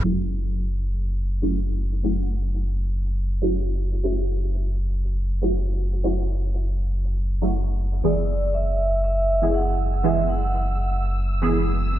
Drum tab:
HH |----xx-xx--xx---|xx--xx-xxx-xxx-x|-x--xx-xx--xx---|xx--xx-xxx-xxx-x|

HH |-x--xx-xx---x---|-x--xx-xxx-xxx--|